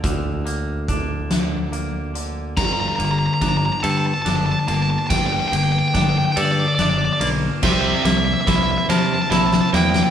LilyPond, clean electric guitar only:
\new Staff \with { instrumentName = "Clean electric guitar" } { \time 6/8 \key g \minor \tempo 4. = 47 <d bes d'>8 bes8 d'8 d8 bes8 d8 | g,8 bes8 d'8 a'8 d'8 bes8~ | bes8 bes8 d'8 a'8 d'8 bes8 | c8 bes8 e'8 bes'8 e'8 bes8 | }